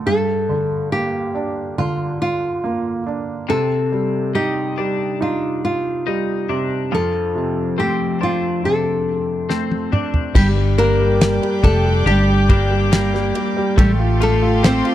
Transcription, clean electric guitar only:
3.49 C3
4.35 D#4
4.78 D4
6.07 D#4
6.49 D4
6.92 F3
7.78 C4
8.21 D4
9.49 C4
9.92 D4
10.36 G2
10.78 D4
11.63 D4
12.06 G4
12.49 A#3 D4 G4
12.92 A#3
13.78 A3
14.21 F4
14.63 C4

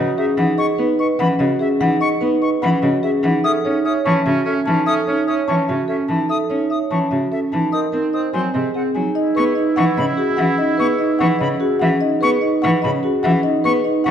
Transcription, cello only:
Already playing: C#3
0.37 E3
0.78 B3
1.20 E3
1.39 C#3
1.81 E3
2.22 B3
2.63 E3
2.83 C#3
3.23 E3
3.65 C#4
4.06 E3
4.26 C#3
4.67 E3
5.08 C#4
5.49 E3
5.69 C#3
6.09 E3
6.50 C#4
6.91 E3
7.11 C#3
7.53 E3
7.93 C4
8.34 F#3
8.55 C3
8.95 F#3
9.37 B3
9.77 E3
9.98 C#3
10.38 E3
10.80 B3
11.21 E3
11.41 C#3
11.82 E3
12.23 B3
12.64 E3
12.84 C#3
13.24 E3
13.65 B3
14.06 E3

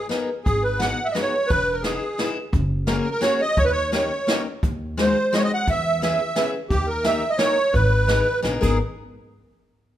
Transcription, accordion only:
0.44 G#4
0.63 B4
0.79 F#5
1.05 E5
1.12 D#5
1.22 C#5
1.47 B4
1.72 A#4
1.83 G#4
2.87 A#4
2.98 A#4
3.11 A#4
3.23 C#5
3.41 D#5
3.58 C#5
3.65 B4
3.72 C#5
3.92 C#5
5.01 C5
5.34 C#5 D#5
5.44 D#5
5.54 F#5
5.70 E5
6.03 E5
6.70 G4
6.87 A#4
7.04 E5
7.30 D#5
7.38 C#5
7.74 B4
8.62 G#4

